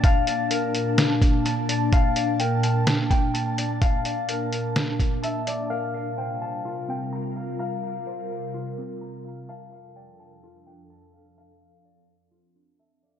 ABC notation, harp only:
X:1
M:4/4
L:1/8
Q:1/4=127
K:Bb
V:1 name="Harp"
f2 z6 | f2 g a2 g z2 | f2 z4 =e d | f2 g a2 g z2 |
f2 z6 | f2 g a2 g z2 | f2 z4 =e d |]